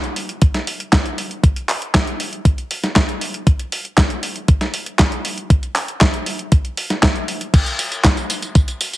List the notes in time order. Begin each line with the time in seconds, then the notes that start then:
0.04 closed hi-hat
0.16 open hi-hat
0.29 closed hi-hat
0.42 kick, closed hi-hat
0.54 snare, closed hi-hat
0.67 open hi-hat
0.80 closed hi-hat
0.93 kick, snare, clap, closed hi-hat
1.06 closed hi-hat
1.18 open hi-hat
1.31 closed hi-hat
1.44 kick, closed hi-hat
1.56 closed hi-hat
1.69 clap, open hi-hat
1.82 closed hi-hat
1.94 kick, snare, clap, closed hi-hat
2.07 closed hi-hat
2.20 open hi-hat
2.33 closed hi-hat
2.45 kick, closed hi-hat
2.58 closed hi-hat
2.71 open hi-hat
2.84 snare, closed hi-hat
2.96 kick, snare, clap, closed hi-hat
3.09 closed hi-hat
3.21 open hi-hat
3.34 closed hi-hat
3.47 kick, closed hi-hat
3.59 closed hi-hat
3.72 open hi-hat
3.85 closed hi-hat
3.97 kick, snare, clap, closed hi-hat
4.10 closed hi-hat
4.23 open hi-hat
4.36 closed hi-hat
4.48 kick, closed hi-hat
4.61 snare, closed hi-hat
4.74 open hi-hat
4.86 closed hi-hat
4.99 kick, snare, clap, closed hi-hat
5.12 closed hi-hat
5.25 open hi-hat
5.38 closed hi-hat
5.50 kick, closed hi-hat
5.63 closed hi-hat
5.76 clap, open hi-hat
5.88 closed hi-hat
6.01 kick, snare, clap, closed hi-hat
6.14 closed hi-hat
6.26 open hi-hat
6.39 closed hi-hat
6.52 kick, closed hi-hat
6.65 closed hi-hat
6.77 open hi-hat
6.90 snare, closed hi-hat
7.03 kick, snare, clap, closed hi-hat
7.16 closed hi-hat
7.28 open hi-hat
7.41 closed hi-hat
7.54 kick, closed hi-hat, crash, tambourine
7.66 closed hi-hat, tambourine
7.79 open hi-hat, tambourine
7.92 closed hi-hat, tambourine
8.04 kick, snare, clap, closed hi-hat, tambourine
8.17 closed hi-hat, tambourine
8.30 open hi-hat, tambourine
8.42 closed hi-hat, tambourine
8.55 kick, closed hi-hat, tambourine
8.68 closed hi-hat, tambourine
8.81 open hi-hat, tambourine
8.93 closed hi-hat, tambourine